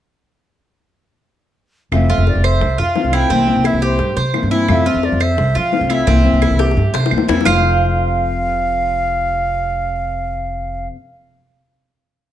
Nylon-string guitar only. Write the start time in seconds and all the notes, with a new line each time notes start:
1.92 C3 E3 A3 C4 F4
2.10 A3 C4
2.61 muted nylon-string guitar stroke
2.95 E3 A3 C4 F4
3.13 E3 A3 C4 F4
3.30 C3 E3 A#3 C4 E4
3.47 E3 A#3 C4 E4
3.99 muted nylon-string guitar stroke
4.34 E3 A#3 C4 E4
4.51 E3 A#3 C4 E4
4.68 C3 E3 A3 C4 F4
4.86 A3 C4
5.37 muted nylon-string guitar stroke
5.71 E3 A3 C4 F4
5.89 E3 A3 C4 F4
6.06 C3 E3 A#3 C4 E4
6.24 E3 A#3 C4 E4
6.76 muted nylon-string guitar stroke
7.11 E3 A#3 C4 E4
7.28 E3 A#3 C4 E4
7.45 F2 C3 A3 C4 F4